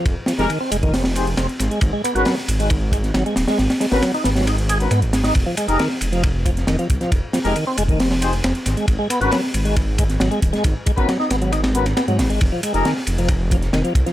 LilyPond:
<<
  \new Staff \with { instrumentName = "Brass ensemble" } { \time 4/4 \key aes \lydian \tempo 4 = 136 r8. <ees' g' aes' bes'>16 r4. <ees' g' aes' c''>16 r4 r16 | r8. <des' ges' bes' ces''>16 r2. | r8. <des' ges' bes' ces''>16 r4. r16 <des' ges' bes' ces''>16 r4 | r8. <ees' g' aes' bes'>16 r2. |
r8. <ees' g' aes' bes'>16 r4. <ees' g' aes' c''>16 r4 r16 | r8. <des' ges' bes' ces''>16 r2. | r8. <des' ges' bes' ces''>16 r4. <des' ges' bes' ces''>16 r4 r16 | r8. <ees' g' aes' bes'>16 r2. | }
  \new Staff \with { instrumentName = "Tonewheel organ" } { \clef bass \time 4/4 \key aes \lydian r8 f16 aes16 ees16 c'16 aes16 ees16 c'16 r8. c'16 r8 aes16 | r16 aes16 ces'16 ges'16 ges16 r8 aes16 r8 aes16 r16 ges16 aes16 r16 aes16 | r8 aes16 ces'16 ges16 ees'16 ces'16 ges16 ees'16 r16 aes'16 r16 ces'16 r8 ees'16 | r16 f16 aes16 ees'16 ees16 r8 f16 r8 f16 r16 ees16 f16 r16 f16 |
r8 f16 aes16 ees16 c'16 aes16 ees16 c'16 r8. c'16 r8 aes16 | r16 aes16 ces'16 ges'16 ges16 r8 aes16 r8 aes16 r16 ges16 aes16 r16 aes16 | r8 aes16 ces'16 ges16 ees'16 ces'16 ges16 ees'16 r16 ces'16 r16 ces'16 ges16 r16 aes16 | r16 f16 aes16 ees'16 ees16 r8 f16 r8 f16 r16 ees16 f16 r16 f16 | }
  \new Staff \with { instrumentName = "Detuned saw bass" } { \clef bass \time 4/4 \key aes \lydian f,,16 r8 f,,16 r8 f,,4. f,,16 r16 aes,,16 r16 | aes,,16 r8 aes,,16 r8 aes,,4. aes,,16 r16 ees,,16 r16 | aes,,16 r8 aes,,16 r8 aes,,4. aes,16 aes,,8. | f,,16 r8 f,,16 r8 f,,4. f,,16 r16 c,16 r16 |
f,,16 r8 f,,16 r8 f,,4. f,,16 r16 aes,,16 r16 | aes,,16 r8 aes,,16 r8 aes,,4. aes,,16 r16 ees,,16 r16 | aes,,16 r8 aes,,16 r8 aes,,4. r16 aes,16 aes,,16 aes,,16 | f,,16 r8 f,,16 r8 f,,4. f,,16 r16 c,16 r16 | }
  \new DrumStaff \with { instrumentName = "Drums" } \drummode { \time 4/4 <hh bd cymr>8 <hh hho sn>16 <hh sn>16 <hh cymr>8 <hh cymr>16 <hh bd>16 <hh hho sn>16 <hho sn>16 <hh cymr>16 hh16 <hh cymr sn>16 hh16 <hh cymr sn>16 hh16 | <hh bd cymr>8 <hh cymr>16 hh16 <hh hho sn>16 sn16 <hh cymr>16 hh16 <hh bd cymr>8 <hh bd cymr>16 <hh sn>16 <hh cymr sn>16 hh16 <hh hho sn>16 <hh hho sn>16 | <hh hho sn>16 <hh hho sn>16 <hh hho sn>16 <hh hho sn>16 <hh cymr sn>16 <hh sn>16 <hh hho sn>16 <hh hho sn>32 <hho sn>32 <hh cymr>16 hh16 <hh cymr>16 hh16 <hh cymr>16 hh16 <hh hho sn>16 <hh hho sn>16 | <hh bd cymr>8 <hh cymr>16 hh16 <hh hho sn>16 sn16 <hh cymr>16 hh16 <hh bd cymr>8 <hh bd cymr>16 <hh sn>16 <hh cymr sn>16 hh16 <hh bd cymr>16 <hh sn>16 |
<hh bd cymr>8 <hh hho sn>16 <hh sn>16 <hh cymr>8 <hh cymr>16 <hh bd>16 <hh hho sn>16 <hho sn>16 <hh cymr>16 hh16 <hh cymr sn>16 hh16 <hh cymr sn>16 hh16 | <hh bd cymr>8 <hh cymr>16 hh16 <hh hho sn>16 sn16 <hh cymr>16 hh16 <hh bd cymr>8 <hh bd cymr>16 <hh sn>16 <hh cymr sn>16 hh16 <hh bd cymr>16 <hh sn>16 | <hh bd cymr>8 <hh bd cymr>16 <hh bd>16 <hh cymr sn>16 sn16 <hh cymr sn>16 hh16 <hh cymr sn>16 <cymr sn>16 hh16 <hh cymr sn>16 <hh cymr sn>16 hh16 <hh hho sn>16 hh16 | <hh bd cymr>8 <hh cymr>16 hh16 <hh hho sn>16 sn16 <hh cymr>16 hh16 <hh bd cymr>8 <hh bd cymr>16 <hh sn>16 <hh cymr sn>16 hh16 <hh bd cymr>16 <hh sn>16 | }
>>